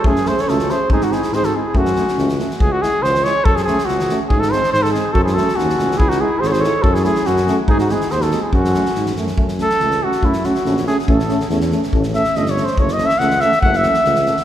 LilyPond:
<<
  \new Staff \with { instrumentName = "Cornet" } { \time 2/4 \tempo 4 = 141 gis'8 bis'16 cis''16 a'8 bis'8 | gis'16 fis'16 gis'8 bis'16 a'16 gis'8 | fis'4. r8 | gis'16 fis'16 gis'8 bis'8 cis''8 |
a'16 gis'16 gis'8 fis'8. r16 | gis'16 a'16 bis'8 bis'16 a'16 gis'8 | a'16 gis'16 a'8 fis'4 | gis'16 fis'16 gis'8 bis'32 cis''32 bis'16 cis''8 |
a'16 gis'16 gis'8 fis'8. r16 | gis'16 fis'16 gis'8 bis'16 a'8 gis'16 | fis'4. r8 | r8 a'4 fis'8 |
e'8 fis'4 gis'8 | a'4 r4 | r8 e''8 \tuplet 3/2 { dis''8 cis''8 bis'8 } | \tuplet 3/2 { cis''8 dis''8 e''8 } fis''8 e''8 |
\tuplet 3/2 { fis''8 e''4~ } e''4 | }
  \new Staff \with { instrumentName = "Clarinet" } { \time 2/4 cis'8 gis'16 a'16 fis'8 gis'8 | dis'16 dis'16 e'8 gis'16 fis'16 e'8 | cis'4. r8 | r2 |
r2 | r2 | fis'16 e'16 fis'8 cis'4 | e'16 dis'16 e'8 gis'32 a'32 gis'16 a'8 |
fis'16 e'16 e'8 cis'8. r16 | dis'16 dis'16 e'8 gis'16 fis'8 e'16 | cis'4. r8 | r2 |
r2 | r2 | r2 | r2 |
r2 | }
  \new Staff \with { instrumentName = "Euphonium" } { \time 2/4 cis'8 cis'8 cis'8 cis'8 | bis8 bis8 bis8 bis8 | cis'8 cis'8 cis'8 cis'8 | r8 e'8 r8 e'8 |
r8 cis'8 r8 cis'8 | r8 bis8 r8 bis8 | r8 cis'8 r8 cis'8 | r8 e'8 r8 e'8 |
r8 cis'8 r8 cis'8 | r8 bis8 r8 bis8 | r8 cis'8 r8 cis'8 | cis'8 cis'8 cis'8 cis'8 |
cis'8 cis'8 cis'8 cis'8 | cis'8 cis'8 cis'8 cis'8 | cis'8 cis'8 cis'8 cis'8 | cis'8 cis'8 cis'8 cis'8 |
cis'8 cis'8 cis'8 cis'8 | }
  \new Staff \with { instrumentName = "Trombone" } { \time 2/4 a8 a8 a8 a8 | gis8 gis8 gis8 gis8 | a8 a8 a8 a8 | r8 gis8 r8 gis8 |
r8 a8 r8 a8 | r8 gis8 r8 gis8 | r8 a8 r8 a8 | r8 gis8 r8 gis8 |
r8 a8 r8 a8 | r8 gis8 r8 gis8 | r8 a8 r8 a8 | a8 a8 a8 a8 |
a8 a8 a8 a8 | a8 a8 a8 a8 | a8 a8 a8 a8 | a8 a8 a8 a8 |
a8 a8 a8 a8 | }
  \new Staff \with { instrumentName = "Tuba" } { \clef bass \time 2/4 fis,4 cis,4 | gis,4 gis,4 | fis,4 cis,4 | cis,4 cis,4 |
fis,4 cis,4 | gis,4 gis,4 | fis,4 dis,8 cis,8 | cis,4 gis,,4 |
fis,4 fis,4 | gis,4 dis,4 | fis,4 gis,8 fis,8 | fis,4 cis,4 |
fis,4 ais,,4 | a,,4 e,4 | a,,4 g,,4 | fis,,4 cis,4 |
fis,,4 cis,4 | }
  \new DrumStaff \with { instrumentName = "Drums" } \drummode { \time 2/4 bd16 sn16 sn16 sn16 sn16 sn16 sn8 | bd16 sn16 sn16 sn16 sn16 sn8. | bd16 sn16 sn16 sn16 sn16 sn16 sn16 sn16 | bd8 sn8 sn16 sn16 sn8 |
bd16 sn16 sn16 sn16 sn16 sn16 sn8 | bd16 sn16 sn16 sn16 sn16 sn16 sn8 | bd16 sn16 sn16 sn16 sn16 sn16 sn16 sn16 | bd16 sn8. sn16 sn16 sn8 |
bd16 sn16 sn16 sn16 sn16 sn16 sn8 | bd16 sn16 sn16 sn16 sn16 sn16 sn8 | bd16 sn16 sn16 sn16 sn16 sn16 sn16 sn16 | bd16 sn16 sn16 sn16 sn16 sn8 sn16 |
bd16 sn16 sn16 sn16 sn16 sn16 sn16 sn16 | bd16 sn16 sn16 sn16 sn16 sn16 sn16 sn16 | bd16 sn16 sn16 sn16 sn16 sn16 sn16 sn16 | bd16 sn16 sn16 sn16 sn16 sn16 sn16 sn16 |
bd16 sn16 sn16 sn16 sn16 sn16 sn16 sn16 | }
>>